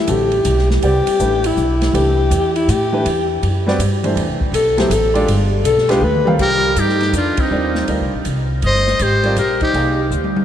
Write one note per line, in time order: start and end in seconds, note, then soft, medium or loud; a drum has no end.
0.00 0.12 E4 medium
0.07 0.44 A1 loud
0.07 0.29 D3 medium
0.07 0.30 G3 medium
0.07 0.30 C4 medium
0.07 0.30 F#4 medium
0.07 0.70 G4 medium
0.07 0.30 A4 medium
0.07 hi-hat pedal medium
0.07 ride medium
0.32 ride soft
0.45 0.81 B1 medium
0.45 hi-hat pedal medium
0.45 ride medium
0.58 snare soft
0.70 0.86 E4 medium
0.70 snare soft
0.82 1.05 C2 medium
0.82 1.18 G3 medium
0.82 1.19 C4 medium
0.82 1.47 G4 loud
0.82 1.19 B4 medium
0.82 1.19 D5 medium
0.82 1.19 F#5 medium
0.82 ride medium
1.07 muted upright bass stroke soft
1.07 ride medium
1.19 1.56 A1 medium
1.19 1.41 E3 medium
1.19 1.42 A3 medium
1.19 1.41 D4 medium
1.19 1.42 G4 medium
1.19 1.42 B4 medium
1.19 hi-hat pedal medium
1.44 1.96 E4 medium
1.44 ride medium
1.57 1.93 B1 loud
1.57 hi-hat pedal medium
1.82 snare medium
1.82 ride medium
1.93 2.30 C2 medium
1.93 2.50 E3 medium
1.93 2.50 A3 medium
1.93 2.50 D4 medium
1.93 2.51 G4 medium
1.93 2.55 G4 loud
1.93 2.51 B4 medium
1.93 ride medium
2.31 2.67 E2 medium
2.31 hi-hat pedal medium
2.31 ride medium
2.56 2.72 E4 medium
2.56 ride medium
2.68 3.04 A2 medium
2.68 3.31 G4 medium
2.68 hi-hat pedal medium
2.68 ride medium
2.92 3.04 E3 medium
2.92 3.04 A3 medium
2.92 3.05 D4 medium
2.92 3.05 G4 medium
2.92 3.05 B4 medium
3.05 3.41 E2 medium
3.05 ride medium
3.43 3.78 F#2 medium
3.43 ride medium
3.67 3.78 G3 medium
3.67 3.79 C4 medium
3.67 3.79 F#4 medium
3.67 3.79 B4 medium
3.67 3.79 D5 loud
3.67 snare medium
3.79 4.15 G2 medium
3.79 hi-hat pedal medium
3.79 ride medium
4.04 4.51 E3 medium
4.04 4.51 A3 medium
4.04 4.51 D4 medium
4.04 4.52 G4 medium
4.04 4.52 C5 medium
4.04 ride medium
4.15 4.29 E2 medium
4.15 ride medium
4.28 4.40 C2 medium
4.40 4.51 A1 medium
4.40 kick medium
4.52 4.89 B1 medium
4.52 4.80 A4 medium
4.52 hi-hat pedal medium
4.52 ride medium
4.77 4.89 F#3 medium
4.77 4.90 B3 medium
4.77 4.90 E4 medium
4.77 4.94 G4 medium
4.77 4.90 A4 medium
4.77 4.90 C5 medium
4.77 snare medium
4.77 ride medium
4.90 5.26 A1 loud
4.90 5.29 A4 medium
4.90 hi-hat pedal medium
4.90 ride medium
5.14 5.62 G#3 medium
5.14 5.62 D4 medium
5.14 5.62 F4 medium
5.14 5.62 G4 medium
5.14 5.63 D5 medium
5.14 ride medium
5.27 5.63 G1 medium
5.27 ride medium
5.64 6.01 B1 medium
5.64 5.92 A4 medium
5.64 hi-hat pedal medium
5.64 ride medium
5.78 snare soft
5.89 6.01 G#3 medium
5.89 6.01 D4 medium
5.89 6.01 F4 medium
5.89 6.01 G4 medium
5.89 6.05 G4 medium
5.89 6.01 B4 loud
5.89 snare medium
5.89 ride medium
6.01 6.38 D2 loud
6.01 6.33 B4 medium
6.01 mid tom medium
6.15 mid tom medium
6.26 6.74 G3 medium
6.26 6.74 C4 medium
6.26 6.74 F4 medium
6.26 6.74 A#4 medium
6.26 6.75 F5 medium
6.26 mid tom loud
6.39 6.75 C2 medium
6.39 6.81 G4 medium
6.39 6.81 A#4 loud
6.39 kick medium
6.39 crash medium
6.76 7.12 G2 medium
6.76 7.15 D#4 medium
6.76 7.15 G4 medium
6.76 hi-hat pedal medium
6.76 ride medium
6.89 snare soft
7.01 snare soft
7.01 ride soft
7.13 7.36 F2 medium
7.13 7.41 D4 medium
7.13 hi-hat pedal medium
7.13 ride medium
7.17 7.43 F4 medium
7.37 7.89 C4 medium
7.37 7.90 D#4 medium
7.37 muted upright bass stroke soft
7.37 kick medium
7.37 ride medium
7.51 7.87 D#2 medium
7.51 7.86 G3 medium
7.51 7.86 C4 medium
7.51 7.87 F4 medium
7.51 7.87 A#4 medium
7.51 7.88 D5 medium
7.75 snare soft
7.88 8.02 D2 medium
7.88 8.10 G3 medium
7.88 8.10 C4 medium
7.88 8.10 F4 medium
7.88 8.10 A#4 medium
7.88 8.10 D#5 medium
7.88 ride medium
8.00 8.13 C2 medium
8.13 8.25 A#1 medium
8.25 8.62 C2 medium
8.25 hi-hat pedal soft
8.25 ride medium
8.62 8.99 G1 medium
8.62 9.04 C5 medium
8.62 9.04 D#5 loud
8.62 ride medium
8.75 snare soft
8.87 snare soft
8.99 9.36 G#1 medium
8.99 9.38 G4 medium
8.99 9.38 C5 loud
8.99 hi-hat pedal medium
8.99 ride medium
9.23 9.35 G3 medium
9.23 9.36 C4 medium
9.23 9.36 F4 medium
9.23 9.36 A#4 medium
9.23 9.36 D5 medium
9.23 ride soft
9.36 9.73 A#1 medium
9.36 9.60 G4 medium
9.36 9.60 A#4 medium
9.36 hi-hat pedal medium
9.36 ride medium
9.61 10.08 D#4 medium
9.61 10.09 G4 medium
9.61 kick medium
9.61 ride soft
9.73 10.10 C2 medium
9.73 9.96 A#3 medium
9.73 9.96 D#4 medium
9.73 9.96 G#4 medium
9.73 9.96 D5 medium
9.73 9.97 F5 medium
9.73 ride medium
10.11 10.45 D2 medium
10.11 hi-hat pedal medium
10.24 high tom medium
10.36 high tom medium